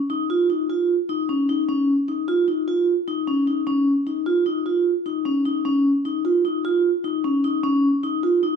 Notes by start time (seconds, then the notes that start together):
0.10 D#4
0.30 F4
0.50 D#4
0.70 F4
1.09 D#4
1.29 C#4
1.49 D#4
1.69 C#4
2.08 D#4
2.28 F4
2.48 D#4
2.68 F4
3.08 D#4
3.27 C#4
3.47 D#4
3.67 C#4
4.07 D#4
4.26 F4
4.46 D#4
4.66 F4
5.06 D#4
5.26 C#4
5.45 D#4
5.65 C#4
6.05 D#4
6.25 F4
6.45 D#4
6.65 F4
7.04 D#4
7.24 C#4
7.44 D#4
7.64 C#4
8.03 D#4
8.23 F4
8.43 D#4